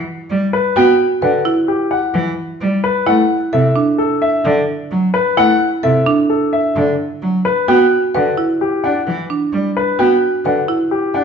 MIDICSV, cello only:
0, 0, Header, 1, 2, 480
1, 0, Start_track
1, 0, Key_signature, 1, "minor"
1, 0, Tempo, 461538
1, 789, Time_signature, 5, 2, 24, 8
1, 11692, End_track
2, 0, Start_track
2, 0, Title_t, "Cello"
2, 0, Program_c, 0, 42
2, 310, Note_on_c, 0, 55, 54
2, 490, Note_off_c, 0, 55, 0
2, 788, Note_on_c, 0, 59, 64
2, 969, Note_off_c, 0, 59, 0
2, 1269, Note_on_c, 0, 50, 57
2, 1449, Note_off_c, 0, 50, 0
2, 2228, Note_on_c, 0, 52, 66
2, 2409, Note_off_c, 0, 52, 0
2, 2712, Note_on_c, 0, 55, 61
2, 2891, Note_off_c, 0, 55, 0
2, 3193, Note_on_c, 0, 57, 67
2, 3372, Note_off_c, 0, 57, 0
2, 3673, Note_on_c, 0, 48, 60
2, 3852, Note_off_c, 0, 48, 0
2, 4626, Note_on_c, 0, 50, 78
2, 4808, Note_off_c, 0, 50, 0
2, 5109, Note_on_c, 0, 54, 55
2, 5289, Note_off_c, 0, 54, 0
2, 5589, Note_on_c, 0, 57, 62
2, 5769, Note_off_c, 0, 57, 0
2, 6068, Note_on_c, 0, 48, 57
2, 6248, Note_off_c, 0, 48, 0
2, 7029, Note_on_c, 0, 50, 72
2, 7209, Note_off_c, 0, 50, 0
2, 7512, Note_on_c, 0, 54, 53
2, 7691, Note_off_c, 0, 54, 0
2, 7989, Note_on_c, 0, 59, 68
2, 8169, Note_off_c, 0, 59, 0
2, 8474, Note_on_c, 0, 50, 61
2, 8652, Note_off_c, 0, 50, 0
2, 9192, Note_on_c, 0, 62, 45
2, 9371, Note_off_c, 0, 62, 0
2, 9430, Note_on_c, 0, 52, 64
2, 9610, Note_off_c, 0, 52, 0
2, 9906, Note_on_c, 0, 55, 49
2, 10087, Note_off_c, 0, 55, 0
2, 10391, Note_on_c, 0, 59, 55
2, 10570, Note_off_c, 0, 59, 0
2, 10867, Note_on_c, 0, 50, 50
2, 11048, Note_off_c, 0, 50, 0
2, 11586, Note_on_c, 0, 62, 40
2, 11692, Note_off_c, 0, 62, 0
2, 11692, End_track
0, 0, End_of_file